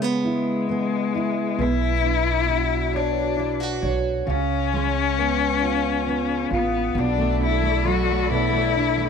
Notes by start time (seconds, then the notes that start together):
Already playing: C#3 G#3
0.02 B3
0.24 G#3 E4
0.69 B3
1.15 E4
1.59 B1 B2 E4
2.04 D4
2.49 F#4
2.93 D4 C#5
3.36 E4
3.60 F#4
3.82 B1 C#5
4.27 C#2 C#3 C#4
4.73 G#3
5.18 B3
5.62 F4
6.05 B3
6.50 A1 B3 F4
6.95 B1 B2 D4 A4 D5 B5
7.18 A3
7.40 D4
7.44 E4
7.62 A3
7.84 F#3 F#4
8.08 A3
8.30 B2 E4
8.52 A3
8.75 D4
8.97 A3